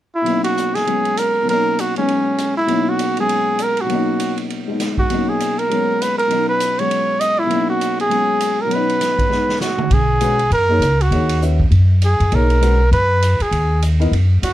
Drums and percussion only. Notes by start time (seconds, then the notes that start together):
0.26 ride
0.44 ride
0.57 hi-hat pedal
0.75 snare, ride
0.87 ride
1.05 ride
1.17 hi-hat pedal, ride
1.49 ride
1.79 hi-hat pedal, ride
1.96 ride
2.08 ride
2.38 hi-hat pedal, ride
2.68 ride
2.99 hi-hat pedal, ride
3.17 ride
3.29 ride
3.59 hi-hat pedal, ride
3.77 ride
3.90 ride
4.20 hi-hat pedal, ride
4.38 ride
4.50 ride
4.80 snare, hi-hat pedal, ride
4.98 kick
5.10 ride
5.40 hi-hat pedal, ride
5.59 ride
5.71 ride
6.02 hi-hat pedal, ride
6.19 ride
6.31 ride
6.60 hi-hat pedal, ride
6.79 ride
6.91 ride
7.21 hi-hat pedal, ride
7.50 ride
7.81 hi-hat pedal, ride
8.00 ride
8.11 ride
8.40 hi-hat pedal, ride
8.71 ride
8.89 ride
9.01 snare, hi-hat pedal, ride
9.19 kick, ride
9.31 snare
9.49 snare
9.61 snare, hi-hat pedal
9.78 mid tom
9.91 kick, ride
10.21 hi-hat pedal, ride
10.39 ride
10.52 ride
10.82 hi-hat pedal, ride
11.01 ride
11.12 ride
11.29 ride
11.42 hi-hat pedal
11.60 kick
11.72 ride
12.02 hi-hat pedal, ride
12.20 ride
12.32 ride
12.50 ride
12.62 hi-hat pedal, ride
12.93 ride
13.22 hi-hat pedal, ride
13.40 ride
13.52 ride
13.82 hi-hat pedal, ride
14.01 ride
14.13 ride
14.43 hi-hat pedal, ride